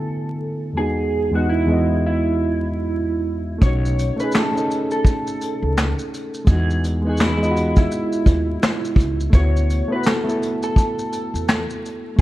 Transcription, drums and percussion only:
3.62 kick loud
3.62 shaker medium
3.85 shaker soft
3.99 closed hi-hat medium
3.99 shaker medium
4.20 shaker soft
4.32 snare loud
4.32 clap medium
4.32 shaker medium
4.57 shaker soft
4.71 closed hi-hat medium
4.71 shaker soft
4.91 shaker soft
5.05 kick medium
5.05 shaker medium
5.27 shaker soft
5.41 closed hi-hat medium
5.41 shaker soft
5.78 snare loud
5.78 clap medium
5.78 shaker medium
5.99 shaker soft
6.14 closed hi-hat medium
6.14 shaker soft
6.34 shaker soft
6.47 kick loud
6.47 shaker medium
6.70 shaker soft
6.84 closed hi-hat medium
6.84 shaker medium
7.17 snare loud
7.17 clap medium
7.17 shaker medium
7.43 shaker soft
7.57 closed hi-hat medium
7.57 shaker soft
7.76 kick medium
7.76 shaker soft
7.92 shaker medium
8.13 shaker medium
8.26 kick medium
8.26 closed hi-hat medium
8.26 shaker soft
8.63 snare loud
8.63 clap medium
8.63 shaker medium
8.85 shaker medium
8.96 kick loud
9.00 closed hi-hat medium
9.00 shaker soft
9.20 shaker soft
9.33 kick loud
9.33 shaker medium
9.57 shaker soft
9.70 closed hi-hat medium
9.70 shaker medium
10.04 snare loud
10.04 clap medium
10.04 shaker medium
10.29 shaker soft
10.43 closed hi-hat medium
10.43 shaker soft
10.63 shaker medium
10.76 kick medium
10.76 shaker medium
10.99 shaker soft
11.13 closed hi-hat medium
11.13 shaker medium
11.35 shaker medium
11.49 snare loud
11.49 clap medium
11.49 shaker medium
11.70 shaker soft
11.86 closed hi-hat medium
11.86 shaker soft

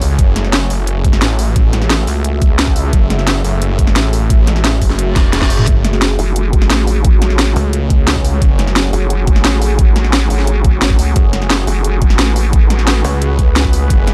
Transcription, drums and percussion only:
0.02 open hi-hat medium
0.19 kick loud
0.19 closed hi-hat medium
0.36 snare soft
0.36 closed hi-hat medium
0.44 snare soft
0.53 snare loud
0.53 closed hi-hat medium
0.70 open hi-hat medium
0.87 closed hi-hat medium
1.04 kick loud
1.04 closed hi-hat medium
1.13 snare soft
1.22 snare loud
1.22 closed hi-hat medium
1.39 open hi-hat medium
1.56 kick loud
1.56 closed hi-hat medium
1.73 snare soft
1.73 closed hi-hat medium
1.82 snare soft
1.90 snare loud
1.90 closed hi-hat medium
2.07 open hi-hat medium
2.24 closed hi-hat medium
2.42 kick loud
2.42 closed hi-hat medium
2.59 snare loud
2.59 closed hi-hat medium
2.67 kick medium
2.76 open hi-hat medium
2.93 kick loud
2.93 closed hi-hat loud
3.10 snare soft
3.10 closed hi-hat medium
3.19 snare soft
3.27 snare loud
3.27 closed hi-hat loud
3.44 open hi-hat medium
3.62 closed hi-hat medium
3.79 kick loud
3.79 closed hi-hat medium
3.87 snare soft
3.96 snare loud
3.96 closed hi-hat loud
4.13 open hi-hat medium
4.30 kick loud
4.30 closed hi-hat loud
4.47 snare soft
4.47 closed hi-hat medium
4.56 snare soft
4.64 snare loud
4.64 closed hi-hat loud
4.82 kick medium
4.82 open hi-hat medium
4.90 snare soft
4.99 closed hi-hat loud
5.16 kick loud
5.16 snare medium
5.16 closed hi-hat medium
5.33 snare medium
5.33 closed hi-hat loud
5.42 kick medium
5.42 snare medium
5.50 open hi-hat medium
5.59 mid tom medium
5.67 kick loud
5.67 closed hi-hat loud
5.85 snare soft
5.85 closed hi-hat medium
5.93 snare soft
6.02 snare loud
6.02 closed hi-hat loud
6.19 open hi-hat medium
6.36 closed hi-hat loud
6.53 kick loud
6.53 closed hi-hat medium
6.62 snare medium
6.70 snare loud
6.70 closed hi-hat loud
6.87 open hi-hat medium
7.05 kick loud
7.05 closed hi-hat medium
7.22 snare soft
7.22 closed hi-hat medium
7.30 snare soft
7.39 snare loud
7.39 closed hi-hat loud
7.56 open hi-hat medium
7.73 closed hi-hat medium
7.90 kick loud
7.90 closed hi-hat medium
8.07 snare loud
8.07 closed hi-hat medium
8.16 kick medium
8.25 open hi-hat medium
8.42 kick loud
8.42 closed hi-hat medium
8.59 snare soft
8.59 closed hi-hat medium
8.67 snare soft
8.76 snare loud
8.76 closed hi-hat medium
8.93 open hi-hat medium
9.10 closed hi-hat medium
9.27 kick loud
9.27 closed hi-hat medium
9.36 snare soft
9.44 snare loud
9.44 closed hi-hat medium
9.62 open hi-hat medium
9.79 kick loud
9.79 closed hi-hat medium
9.96 snare soft
9.96 closed hi-hat medium
10.04 snare soft
10.13 snare loud
10.13 closed hi-hat medium
10.30 open hi-hat medium
10.39 snare soft
10.47 closed hi-hat medium
10.64 kick loud
10.64 closed hi-hat medium
10.82 snare loud
10.82 closed hi-hat medium
10.90 kick medium
10.99 open hi-hat medium
11.16 kick loud
11.16 closed hi-hat medium
11.33 snare soft
11.33 closed hi-hat medium
11.42 snare soft
11.50 snare loud
11.50 closed hi-hat medium
11.67 open hi-hat medium
11.84 closed hi-hat medium
12.02 kick loud
12.02 closed hi-hat medium
12.10 snare soft
12.19 snare loud
12.19 closed hi-hat medium
12.36 open hi-hat medium
12.53 kick loud
12.53 closed hi-hat medium
12.70 snare soft
12.70 closed hi-hat medium
12.79 snare soft
12.87 snare loud
12.87 closed hi-hat medium
13.05 open hi-hat medium
13.22 closed hi-hat medium
13.39 kick loud
13.39 closed hi-hat medium
13.56 snare loud
13.56 closed hi-hat medium
13.65 kick medium
13.73 open hi-hat medium
13.90 kick loud
13.90 closed hi-hat medium
14.07 snare soft
14.07 closed hi-hat medium

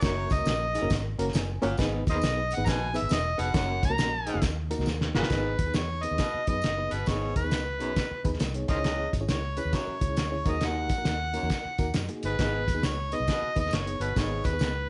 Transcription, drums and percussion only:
0.01 kick loud
0.01 snare loud
0.01 closed hi-hat medium
0.01 tambourine medium
0.30 kick loud
0.30 closed hi-hat medium
0.30 tambourine medium
0.45 snare loud
0.45 closed hi-hat medium
0.45 tambourine loud
0.75 closed hi-hat medium
0.75 tambourine medium
0.90 kick medium
0.90 snare loud
0.90 closed hi-hat loud
0.90 tambourine medium
1.19 closed hi-hat medium
1.19 tambourine medium
1.28 snare soft
1.33 snare loud
1.33 closed hi-hat loud
1.33 tambourine loud
1.62 closed hi-hat medium
1.62 tambourine medium
1.77 kick loud
1.77 snare loud
1.77 closed hi-hat medium
1.77 tambourine medium
2.07 kick medium
2.07 closed hi-hat medium
2.07 tambourine medium
2.21 snare loud
2.21 closed hi-hat medium
2.21 tambourine loud
2.51 closed hi-hat medium
2.51 tambourine medium
2.66 kick medium
2.66 snare loud
2.66 closed hi-hat loud
2.66 tambourine medium
2.94 closed hi-hat medium
2.94 tambourine medium
3.09 snare loud
3.09 closed hi-hat loud
3.09 tambourine loud
3.39 closed hi-hat medium
3.39 tambourine soft
3.54 kick loud
3.54 snare loud
3.54 closed hi-hat medium
3.54 tambourine medium
3.83 kick loud
3.83 closed hi-hat medium
3.83 tambourine medium
3.98 snare loud
3.98 closed hi-hat medium
3.98 tambourine loud
4.27 closed hi-hat medium
4.27 tambourine medium
4.42 kick medium
4.42 snare loud
4.42 closed hi-hat loud
4.42 tambourine loud
4.71 closed hi-hat medium
4.71 tambourine soft
4.80 snare soft
4.86 snare medium
4.86 tambourine medium
5.01 snare medium
5.15 snare loud
5.15 tambourine medium
5.23 snare medium
5.30 kick loud
5.30 snare loud
5.30 closed hi-hat medium
5.30 tambourine medium
5.59 kick medium
5.59 closed hi-hat medium
5.59 tambourine soft
5.74 snare loud
5.74 closed hi-hat medium
5.74 tambourine loud
6.03 closed hi-hat medium
6.03 tambourine medium
6.18 kick medium
6.18 snare loud
6.18 closed hi-hat medium
6.18 tambourine medium
6.47 kick medium
6.47 closed hi-hat medium
6.47 tambourine soft
6.62 snare loud
6.62 closed hi-hat medium
6.62 tambourine medium
6.91 closed hi-hat medium
6.91 tambourine soft
7.06 kick medium
7.06 snare loud
7.06 closed hi-hat medium
7.06 tambourine medium
7.36 kick medium
7.36 closed hi-hat medium
7.36 tambourine medium
7.51 snare loud
7.51 closed hi-hat medium
7.51 tambourine loud
7.80 closed hi-hat soft
7.80 tambourine medium
7.96 kick medium
7.96 snare loud
7.96 closed hi-hat medium
7.96 tambourine medium
8.25 kick medium
8.25 closed hi-hat medium
8.25 tambourine soft
8.34 snare soft
8.39 snare loud
8.39 closed hi-hat loud
8.39 tambourine medium
8.54 closed hi-hat medium
8.68 kick loud
8.68 closed hi-hat medium
8.68 tambourine soft
8.84 snare loud
8.84 closed hi-hat medium
8.84 tambourine medium
9.13 kick medium
9.13 closed hi-hat medium
9.13 tambourine medium
9.28 snare loud
9.28 closed hi-hat medium
9.28 tambourine medium
9.57 closed hi-hat medium
9.57 tambourine medium
9.73 kick medium
9.73 snare loud
9.73 closed hi-hat medium
9.73 tambourine medium
10.01 kick medium
10.01 closed hi-hat medium
10.01 tambourine soft
10.17 snare loud
10.17 closed hi-hat loud
10.17 tambourine medium
10.46 kick loud
10.46 closed hi-hat medium
10.46 tambourine soft
10.61 snare loud
10.61 closed hi-hat medium
10.61 tambourine medium
10.89 kick medium
10.89 closed hi-hat medium
10.89 tambourine soft
11.05 snare loud
11.05 closed hi-hat medium
11.05 tambourine loud
11.34 closed hi-hat medium
11.34 tambourine medium
11.50 kick medium
11.50 snare medium
11.50 closed hi-hat medium
11.50 tambourine medium
11.78 kick medium
11.78 closed hi-hat medium
11.78 tambourine medium
11.94 snare loud
11.94 closed hi-hat medium
11.94 tambourine loud
12.09 closed hi-hat soft
12.23 closed hi-hat medium
12.23 tambourine soft
12.39 kick loud
12.39 snare loud
12.39 closed hi-hat medium
12.39 tambourine medium
12.68 kick medium
12.68 closed hi-hat medium
12.68 tambourine medium
12.83 snare loud
12.83 closed hi-hat medium
12.83 tambourine loud
13.12 closed hi-hat medium
13.12 tambourine medium
13.27 kick medium
13.27 snare loud
13.27 closed hi-hat medium
13.27 tambourine medium
13.56 kick medium
13.56 closed hi-hat medium
13.56 tambourine soft
13.66 snare soft
13.71 snare loud
13.71 closed hi-hat loud
13.71 tambourine loud
13.87 closed hi-hat medium
14.01 closed hi-hat medium
14.01 tambourine medium
14.16 kick loud
14.16 snare loud
14.16 closed hi-hat medium
14.16 tambourine medium
14.44 kick medium
14.44 closed hi-hat medium
14.44 tambourine medium
14.59 snare medium
14.59 closed hi-hat medium
14.59 tambourine medium

